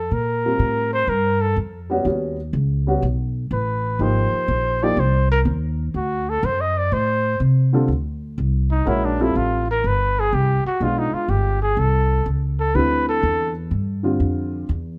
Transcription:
Already playing: trumpet A4
0.11 upright bass A#2, trumpet A#4
0.45 grand piano G3 C4 F4 A#4
0.59 upright bass A2
0.93 trumpet C5
1.07 upright bass G2, trumpet A#4
1.41 trumpet A4
1.56 upright bass F2
1.90 grand piano G3 B3 C#4 F#4
2.05 upright bass D#2, grand piano G3 B3 C#4 F#4
2.53 upright bass C#2
2.87 grand piano G3 B3 C#4 F#4
3.02 upright bass B1
3.51 upright bass A1, trumpet B4
3.99 upright bass G#1, grand piano F3 A#3 D#4 G4, trumpet C5
4.33 muted upright bass stroke
4.48 upright bass A#1
4.82 grand piano F3 A#3 D#4 G4, trumpet D5
4.97 upright bass C2, trumpet C5
5.31 trumpet A#4
5.45 upright bass D#2
5.94 upright bass D2, trumpet F#4
6.29 trumpet A4
6.43 upright bass F#2, trumpet C5
6.61 trumpet D#5
6.78 trumpet D5
6.92 upright bass A2, trumpet C5
7.40 upright bass C3
7.73 grand piano D3 G3 C4 F4 A4
7.88 upright bass D2
8.38 upright bass C2
8.71 trumpet D#4
8.86 upright bass A#1, grand piano G#3 C#4 F#4 A#4, trumpet E4
9.05 trumpet D4
9.20 grand piano G3 C4 F4 A4, trumpet E4
9.35 upright bass A1, trumpet F4
9.71 trumpet A#4
9.84 upright bass G1, trumpet B4
10.20 trumpet G#4
10.33 upright bass C2, trumpet G4
10.65 trumpet F#4, muted upright bass stroke
10.80 upright bass B1, grand piano G#3 B3 D4 F4, trumpet F4
10.99 trumpet D#4
11.14 trumpet F4, muted upright bass stroke
11.28 upright bass G1, trumpet G4
11.62 trumpet G#4
11.77 upright bass C2, trumpet A4
12.26 upright bass C#2
12.60 trumpet A4
12.75 upright bass D2, grand piano D3 G3 C4 E4, trumpet B4
13.09 trumpet A4
13.23 upright bass E2
13.71 upright bass G2
14.03 grand piano D3 G3 C4 F4
14.20 upright bass F2
14.69 upright bass E2

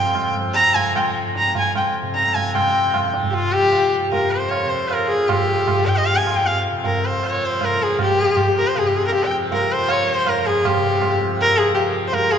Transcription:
Already playing: tanpura F2 C3 F3, sarangi G5
0.15 tabla na, tabla ge
0.35 tabla ge
0.40 tanpura F3
0.54 sarangi A#5, tabla te
0.74 sarangi G#5, tabla tin, tabla ge
0.95 tanpura F3, sarangi G5, tabla na, tabla ge
1.35 sarangi A#5, tabla te
1.47 tanpura F2
1.55 sarangi G#5, tabla tin, tabla ge
1.75 sarangi G5, tabla na, tabla ge
2.02 tanpura C3
2.15 sarangi A#5, tabla te
2.34 sarangi G#5, tabla tin, tabla ge
2.54 tanpura C3, sarangi G5, tabla na, tabla ge
2.94 tabla na, tabla ge
3.07 tanpura F3
3.14 tabla te
3.23 tabla ge
3.30 sarangi F4 G4, tabla tin
3.52 sarangi G4
3.60 tanpura F3
3.72 tabla tin
4.12 tanpura F2, sarangi A#4, tabla tin, tabla ge
4.31 sarangi C5
4.50 sarangi C#5, tabla na
4.65 tanpura C3
4.69 sarangi C5
4.89 sarangi A#4, tabla na
5.06 sarangi G#4 A#4
5.16 tanpura F3
5.28 sarangi G4, tabla na, tabla ge
5.68 tanpura F3, tabla na, tabla ge
5.87 sarangi G5, tabla ge
5.97 sarangi D#5
6.06 sarangi F5, tabla tin
6.17 tanpura F2, sarangi G#5
6.27 tabla na
6.37 sarangi G5
6.46 sarangi F5, tabla tin
6.71 tanpura C3
6.84 sarangi A#4, tabla tin, tabla ge
7.06 sarangi C5
7.22 tanpura F3, sarangi C#5, tabla na
7.45 sarangi C5
7.61 sarangi A#4, tabla na, tabla ge
7.74 tanpura F3
7.80 sarangi G#4, tabla ge
7.99 sarangi G4, tabla na, tabla ge
8.24 tanpura F2
8.37 tabla na, tabla ge
8.56 sarangi A#4, tabla ge
8.67 sarangi C5
8.75 tanpura C3, sarangi G#4, tabla tin
8.87 sarangi G4
8.97 sarangi G#4
9.07 sarangi A#4
9.12 sarangi G4, tabla tin
9.24 tanpura F3, sarangi G5
9.52 sarangi A#4, tabla tin, tabla ge
9.72 sarangi C5
9.77 tanpura F3
9.89 sarangi C#5, tabla na
10.09 sarangi C5
10.26 tanpura F2, sarangi A#4, tabla na, tabla ge
10.46 sarangi G#4, tabla ge
10.65 sarangi G4, tabla na, tabla ge
10.76 tanpura C3
11.02 tabla na, tabla ge
11.21 tabla ge
11.26 tanpura F3
11.39 sarangi A#4, tabla tin
11.57 sarangi G#4, tabla na
11.74 tanpura F3, sarangi G4, tabla tin
12.07 sarangi C5
12.13 sarangi A#4, tabla tin, tabla ge
12.25 tanpura F2
12.32 sarangi G#4, tabla na

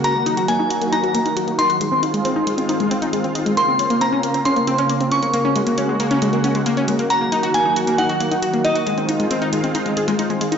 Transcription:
Already playing: analog synth pad A#3 F#4
0.04 analog synth pad D#3 F#3, synth pluck F#4, synth bell A#5, closed hi-hat
0.15 synth pluck A#3
0.26 synth pluck D#4, closed hi-hat
0.37 synth pluck F#4, closed hi-hat
0.48 synth pluck A#3, synth bell G#5, closed hi-hat
0.59 synth pluck D#4
0.70 synth pluck F#4, closed hi-hat
0.81 synth pluck A#3, closed hi-hat
0.92 synth pluck D#4, synth bell A#5, closed hi-hat
1.03 synth pluck F#4, closed hi-hat
1.14 synth pluck A#3, closed hi-hat
1.25 synth pluck D#4, closed hi-hat
1.37 synth pluck F#4, closed hi-hat
1.48 synth pluck A#3, closed hi-hat
1.59 synth pluck D#4, synth bell C6, closed hi-hat
1.70 synth pluck F#4, closed hi-hat
1.81 synth pluck G#3, analog synth pad G#3 C4 F4, closed hi-hat
1.92 synth pluck C4
2.03 synth pluck D#4, closed hi-hat
2.14 synth pluck G#3, closed hi-hat
2.25 synth pluck C4, closed hi-hat
2.36 synth pluck D#4
2.47 synth pluck G#3, closed hi-hat
2.58 synth pluck C4, closed hi-hat
2.69 synth pluck D#4, closed hi-hat
2.80 synth pluck G#3, closed hi-hat
2.91 synth pluck C4, closed hi-hat
3.02 synth pluck D#4, closed hi-hat
3.13 synth pluck G#3, closed hi-hat
3.24 synth pluck C4, closed hi-hat
3.35 synth pluck D#4, closed hi-hat
3.46 synth pluck G#3, closed hi-hat
3.57 analog synth pad C#3 A#3, synth pluck A#3, synth bell C6, closed hi-hat
3.68 synth pluck C4
3.79 synth pluck C#4, closed hi-hat
3.90 synth pluck A#3, closed hi-hat
4.01 synth pluck C4, synth bell A#5, closed hi-hat
4.12 synth pluck C#4
4.23 synth pluck A#3, closed hi-hat
4.34 synth pluck C4, closed hi-hat
4.45 synth pluck C#4, synth bell C6, closed hi-hat
4.56 synth pluck A#3, closed hi-hat
4.67 synth pluck C4, closed hi-hat
4.78 synth pluck C#4, closed hi-hat
4.89 synth pluck A#3, closed hi-hat
5.01 synth pluck C4, closed hi-hat
5.12 synth pluck C#4, synth bell C#6, closed hi-hat
5.23 synth pluck A#3, closed hi-hat
5.34 analog synth pad G#3 F#4, synth pluck A#3, closed hi-hat
5.45 synth pluck C#4
5.56 synth pluck G#3, closed hi-hat
5.67 synth pluck A#3, closed hi-hat
5.78 synth pluck C#4, closed hi-hat
5.89 synth pluck G#3
6.00 synth pluck A#3, closed hi-hat
6.11 synth pluck C#4, closed hi-hat
6.22 synth pluck G#3, closed hi-hat
6.33 synth pluck A#3, closed hi-hat
6.44 synth pluck C#4, closed hi-hat
6.55 synth pluck G#3, closed hi-hat
6.66 synth pluck A#3, closed hi-hat
6.77 synth pluck C#4, closed hi-hat
6.88 synth pluck G#3, closed hi-hat
6.99 synth pluck A#3, closed hi-hat
7.10 analog synth pad D#3 F#3 F#4, synth pluck F#4, synth bell A#5, closed hi-hat
7.21 synth pluck A#3
7.32 synth pluck D#4, closed hi-hat
7.43 synth pluck F#4, closed hi-hat
7.54 synth pluck A#3, synth bell G#5, closed hi-hat
7.65 synth pluck D#4
7.76 synth pluck F#4, closed hi-hat
7.87 synth pluck A#3, closed hi-hat
7.98 synth pluck D#4, synth bell F#5, closed hi-hat
8.09 synth pluck F#4, closed hi-hat
8.20 synth pluck A#3, closed hi-hat
8.31 synth pluck D#4, closed hi-hat
8.42 synth pluck F#4, closed hi-hat
8.53 synth pluck A#3, closed hi-hat
8.64 synth pluck D#4, synth bell D#5, closed hi-hat
8.76 synth pluck F#4, closed hi-hat
8.87 analog synth pad G#3 C4 F4, synth pluck G#3, closed hi-hat
8.98 synth pluck C4, closed hi-hat
9.09 synth pluck D#4, closed hi-hat
9.20 synth pluck G#3, closed hi-hat
9.31 synth pluck C4, closed hi-hat
9.42 synth pluck D#4, closed hi-hat
9.53 synth pluck G#3, closed hi-hat
9.64 synth pluck C4, closed hi-hat
9.75 synth pluck D#4, closed hi-hat
9.86 synth pluck G#3, closed hi-hat
9.97 synth pluck G#4, closed hi-hat
10.08 synth pluck G#3, closed hi-hat
10.19 synth pluck D#4, closed hi-hat
10.30 synth pluck G#3, closed hi-hat
10.41 synth pluck G#3, closed hi-hat
10.52 synth pluck D#4, closed hi-hat

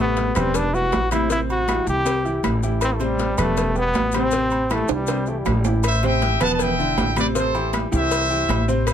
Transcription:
Already playing: upright bass A1
0.00 grand piano C3 A3 A4, trombone B3
0.16 cowbell, high conga, low timbale, maracas
0.35 upright bass E1, grand piano G3 G4 B4, trombone C4, cowbell, high conga, low conga, low agogo, claves, maracas
0.54 trombone D4, cowbell, high conga, low conga, low agogo, maracas
0.74 grand piano G3 E4 B4, trombone F#4, high conga, maracas
0.92 upright bass A1, cowbell, high conga, low timbale, low agogo, maracas
1.11 grand piano C3 C4 C5, trombone E4, cowbell, high conga, low agogo, claves, maracas
1.29 grand piano C3 C4 C5, trombone E4, cowbell, maracas
1.50 trombone F#4, high conga, low agogo, maracas
1.68 grand piano E3 E4 G4, cowbell, high conga, low timbale, low agogo, claves, maracas
1.87 upright bass C2, trombone G4, high conga, maracas
2.05 grand piano C3 C4 C5, cowbell, high conga, low agogo, maracas
2.24 grand piano E3 E4 G4, high conga, maracas
2.43 upright bass A1, cowbell, high conga, low timbale, low agogo, claves, maracas
2.63 grand piano E3 E4 G4, maracas
2.81 trombone C4, cowbell, high conga, low agogo, claves, maracas
2.94 trombone A3
3.00 grand piano C3 C4 C5, high conga, low agogo, maracas
3.04 trombone G3
3.19 cowbell, high conga, low timbale, maracas
3.38 upright bass E1, grand piano G3 G4 B4, trombone A3, cowbell, high conga, low conga, low agogo, claves, maracas
3.57 cowbell, high conga, low conga, low agogo, maracas
3.75 grand piano G3 G4 B4, trombone B3, high conga, maracas
3.94 upright bass A1, cowbell, high conga, low timbale, low agogo, maracas
4.12 grand piano C3 C4 C5, cowbell, high conga, low agogo, claves, maracas
4.16 trombone C4
4.31 grand piano C3 C4 C5, cowbell, high conga, maracas
4.50 high conga, low agogo, maracas
4.70 grand piano E3 E4 G4, trombone A3, cowbell, high conga, low timbale, low agogo, claves, maracas
4.88 upright bass C2, high timbale, maracas
4.92 trombone G3
5.07 grand piano C3 C4 C5, cowbell, high timbale, low agogo, maracas
5.26 grand piano E3 E4 G4, trombone A3, high conga, maracas
5.39 trombone G3
5.45 upright bass A1, trombone F#3, cowbell, high conga, low timbale, low agogo, claves, maracas
5.57 trombone G3
5.64 grand piano E3 E4 G4, high conga, low timbale, maracas
5.83 trumpet section C5 E5, cowbell, high conga, low agogo, claves, maracas
6.03 grand piano C3 C4 C5, trumpet section E5 G5, high conga, low agogo, maracas
6.22 grand piano E3 E4 G4, cowbell, high conga, low timbale, maracas
6.40 upright bass E1, grand piano B2 B3 B4, trumpet section F#5 A5, cowbell, high conga, low conga, low agogo, claves, maracas
6.54 trumpet section A5
6.59 trumpet section E5 G5, cowbell, high conga, low conga, low agogo, maracas
6.78 grand piano D3 D4 E4, high conga, maracas
6.97 upright bass A1, cowbell, high conga, low timbale, low agogo, maracas
7.16 grand piano C3 C4 C5, trumpet section B4 D5, cowbell, high conga, low agogo, claves, maracas
7.35 grand piano C3 C4 C5, trumpet section A4 C5, cowbell, maracas
7.54 grand piano E3 E4 G4, high conga, low agogo, maracas
7.73 cowbell, high conga, low timbale, low agogo, claves, maracas
7.91 upright bass C2, grand piano E3 E4 G4, trumpet section C5 E5, high conga, maracas
8.11 cowbell, high conga, low agogo, maracas
8.30 grand piano E3 E4 G4, high conga, maracas
8.48 upright bass A1, cowbell, high conga, low timbale, low agogo, claves, maracas
8.68 grand piano C3 C4 C5, maracas
8.87 trumpet section C5 E5, cowbell, high conga, low agogo, claves, maracas

